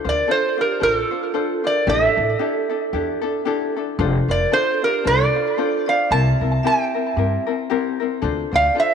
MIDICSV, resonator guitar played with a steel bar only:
0, 0, Header, 1, 2, 480
1, 0, Start_track
1, 0, Key_signature, -1, "minor"
1, 0, Tempo, 529568
1, 1696, Time_signature, 4, 2, 24, 8
1, 8103, End_track
2, 0, Start_track
2, 0, Title_t, "Resonator guitar played with a steel bar"
2, 0, Program_c, 0, 25
2, 81, Note_on_c, 0, 74, 79
2, 279, Note_off_c, 0, 74, 0
2, 283, Note_on_c, 0, 72, 86
2, 548, Note_off_c, 0, 72, 0
2, 552, Note_on_c, 0, 70, 64
2, 751, Note_off_c, 0, 70, 0
2, 755, Note_on_c, 0, 70, 90
2, 854, Note_off_c, 0, 70, 0
2, 854, Note_on_c, 0, 69, 90
2, 1511, Note_on_c, 0, 74, 85
2, 1518, Note_off_c, 0, 69, 0
2, 1714, Note_off_c, 0, 74, 0
2, 1717, Note_on_c, 0, 76, 89
2, 3381, Note_off_c, 0, 76, 0
2, 3906, Note_on_c, 0, 74, 79
2, 4092, Note_off_c, 0, 74, 0
2, 4110, Note_on_c, 0, 72, 92
2, 4381, Note_off_c, 0, 72, 0
2, 4387, Note_on_c, 0, 70, 70
2, 4593, Note_off_c, 0, 70, 0
2, 4597, Note_on_c, 0, 74, 101
2, 5334, Note_off_c, 0, 74, 0
2, 5338, Note_on_c, 0, 77, 84
2, 5544, Note_on_c, 0, 81, 98
2, 5548, Note_off_c, 0, 77, 0
2, 6035, Note_off_c, 0, 81, 0
2, 6042, Note_on_c, 0, 79, 79
2, 6744, Note_off_c, 0, 79, 0
2, 7754, Note_on_c, 0, 77, 97
2, 7936, Note_off_c, 0, 77, 0
2, 7972, Note_on_c, 0, 76, 97
2, 8103, Note_off_c, 0, 76, 0
2, 8103, End_track
0, 0, End_of_file